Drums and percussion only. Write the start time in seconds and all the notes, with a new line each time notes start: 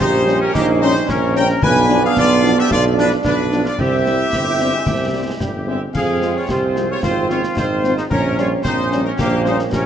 0.01 concert bass drum, snare
0.28 snare
0.55 concert bass drum, snare
0.82 snare
0.95 snare
1.09 concert bass drum, snare
1.36 snare
1.49 snare
1.62 concert bass drum, crash
1.89 snare
2.17 concert bass drum, snare
2.44 snare
2.71 concert bass drum, snare
2.98 snare
3.11 snare
3.25 concert bass drum, snare
3.52 snare
3.65 snare
3.79 concert bass drum, crash
4.06 snare
4.33 concert bass drum, snare
4.59 snare
4.86 concert bass drum, snare
5.40 concert bass drum, snare
5.95 concert bass drum, crash
6.22 snare
6.49 concert bass drum, snare
6.76 snare
7.03 concert bass drum, snare
7.30 snare
7.43 snare
7.57 concert bass drum, snare
7.84 snare
7.98 snare
8.11 concert bass drum, crash
8.38 snare
8.65 concert bass drum, snare
8.92 snare
9.19 concert bass drum, snare
9.46 snare
9.59 snare
9.73 concert bass drum, snare